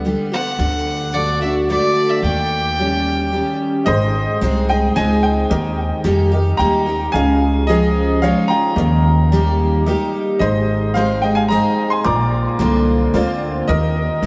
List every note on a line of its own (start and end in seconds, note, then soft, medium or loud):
0.00 0.13 D2 medium
0.05 0.31 D3 soft
0.05 0.31 G3 medium
0.05 0.31 B3 soft
0.05 0.30 G4 medium
0.32 0.59 B3 soft
0.32 0.58 G4 medium
0.32 1.15 F#5 medium
0.59 1.76 D2 medium
0.59 1.12 D3 medium
1.13 1.39 D3 medium
1.13 1.40 A3 medium
1.13 1.40 D4 medium
1.13 1.39 F#4 medium
1.13 1.41 D5 medium
1.41 1.68 D4 soft
1.41 1.67 F#4 medium
1.41 1.54 E5 medium
1.69 2.20 D3 soft
1.69 2.21 A3 medium
1.69 2.21 D4 medium
1.69 2.21 F#4 medium
1.69 2.11 D5 loud
2.10 2.23 E5 medium
2.22 3.40 D#2 medium
2.22 2.77 D#3 medium
2.22 3.56 G5 loud
2.78 3.30 D#3 medium
2.78 3.30 G3 medium
2.78 3.31 C#4 medium
2.78 3.31 G4 medium
3.32 3.84 D#3 soft
3.32 3.84 G3 soft
3.32 3.85 C#4 medium
3.32 3.85 G4 medium
3.85 4.25 G#1 medium
3.85 4.90 G#2 medium
3.85 4.92 D#4 medium
3.85 4.93 G#4 medium
3.85 4.93 C5 medium
3.85 4.38 C5 medium
3.85 4.37 D#5 loud
3.85 4.94 D#5 medium
4.41 4.87 C2 medium
4.41 4.67 G#3 medium
4.41 4.68 C4 medium
4.41 4.68 D#4 medium
4.41 4.68 G#4 medium
4.69 4.96 D#4 soft
4.69 4.95 G#4 medium
4.69 4.94 D#5 medium
4.69 4.97 G5 loud
4.96 5.42 C#2 medium
4.96 5.47 G#3 medium
4.96 5.48 C4 medium
4.96 5.48 D#4 medium
4.96 5.50 G#4 soft
4.96 5.48 G#4 medium
4.96 5.51 C5 soft
4.96 5.21 D#5 medium
4.96 5.50 D#5 medium
4.96 5.24 G#5 loud
5.23 6.01 D#5 medium
5.23 6.01 G5 loud
5.50 5.89 D#2 medium
5.50 6.54 D#3 loud
5.50 6.31 D#4 medium
5.50 6.32 G4 medium
5.50 6.32 A#4 medium
5.50 6.32 D#5 medium
6.04 6.51 F2 medium
6.04 6.30 G3 medium
6.04 6.31 A#3 medium
6.04 6.31 D#4 medium
6.04 6.30 G4 loud
6.32 7.14 D#4 medium
6.32 6.59 D#4 soft
6.32 6.58 G4 medium
6.32 7.14 G4 medium
6.32 7.15 A#4 soft
6.32 7.14 D#5 medium
6.57 7.05 D#2 medium
6.57 6.85 G3 medium
6.57 6.86 A#3 medium
6.57 6.86 D#4 medium
6.57 6.85 G4 medium
6.57 7.10 G5 medium
6.57 7.09 A#5 loud
6.86 7.13 D#4 soft
6.86 7.12 G4 medium
7.12 8.31 C#2 medium
7.12 8.18 C#3 loud
7.12 8.74 F4 medium
7.12 8.74 G#4 medium
7.12 8.75 C#5 medium
7.12 8.75 D#5 medium
7.12 7.65 F5 medium
7.12 7.69 G#5 loud
7.67 8.20 F3 medium
7.67 8.20 G#3 medium
7.67 8.21 D#4 loud
7.67 8.21 F4 loud
7.67 8.19 G#4 medium
7.67 8.24 D#5 medium
8.22 8.48 F3 medium
8.22 8.49 G#3 medium
8.22 8.49 D#4 medium
8.22 8.50 F4 medium
8.22 8.48 C#5 medium
8.22 8.50 F5 medium
8.48 8.76 F4 medium
8.48 10.09 G5 medium
8.48 10.08 A#5 loud
8.53 8.78 D#4 soft
8.75 9.93 D#2 loud
8.75 9.81 D#3 medium
8.75 9.83 D#4 medium
8.75 9.83 G4 medium
8.75 9.84 A#4 medium
8.75 9.84 D#5 medium
9.32 9.84 G3 medium
9.32 9.84 A#3 medium
9.32 9.85 D#4 medium
9.32 9.85 G4 medium
9.86 10.38 G3 medium
9.86 10.39 A#3 medium
9.86 10.37 D#4 medium
9.86 10.39 D#4 medium
9.86 10.41 G4 medium
9.86 10.39 G4 medium
9.86 10.41 A#4 medium
9.86 10.40 D#5 medium
10.39 11.57 G#1 medium
10.39 11.45 G#2 medium
10.39 11.46 D#4 medium
10.39 11.47 G#4 medium
10.39 11.47 C5 medium
10.39 10.92 C5 medium
10.39 10.91 D#5 medium
10.39 11.48 D#5 medium
10.94 11.21 G#3 medium
10.94 11.22 C4 medium
10.94 11.22 D#4 medium
10.94 11.22 G#4 loud
10.94 11.21 C5 medium
10.94 11.23 F5 medium
11.22 11.50 D#4 soft
11.22 11.49 G#4 medium
11.22 11.36 D#5 medium
11.22 11.36 G5 medium
11.35 11.42 F5 medium
11.35 11.40 G#5 loud
11.48 12.02 G#3 medium
11.48 12.02 C4 medium
11.48 12.04 D#4 medium
11.48 12.03 D#4 medium
11.48 12.04 G#4 soft
11.48 12.04 C5 soft
11.48 11.88 D#5 medium
11.48 12.05 D#5 medium
11.48 11.91 A#5 medium
11.53 12.03 G#4 medium
11.90 12.04 G#5 medium
11.90 12.04 C6 medium
12.04 12.44 A#1 medium
12.04 13.08 A#2 medium
12.04 13.11 F4 medium
12.04 13.11 A#4 medium
12.04 13.12 C5 medium
12.04 13.12 D5 medium
12.04 12.83 A#5 medium
12.04 12.82 D6 loud
12.59 13.05 C2 medium
12.59 13.11 D3 medium
12.59 13.11 A#3 medium
12.59 13.12 C4 medium
12.59 13.12 F4 medium
13.14 13.60 D2 medium
13.14 13.65 D3 medium
13.14 13.66 A#3 medium
13.14 13.66 C4 medium
13.14 13.68 F4 medium
13.14 13.67 F4 medium
13.14 13.68 A#4 medium
13.14 13.69 C5 medium
13.14 13.69 D5 medium
13.68 14.07 D#2 loud
13.68 14.26 D#3 loud
13.68 14.26 D#4 medium
13.68 14.26 G4 medium
13.68 14.26 A#4 medium
13.68 14.26 D#5 medium
14.22 14.26 C2 medium
14.22 14.26 G3 medium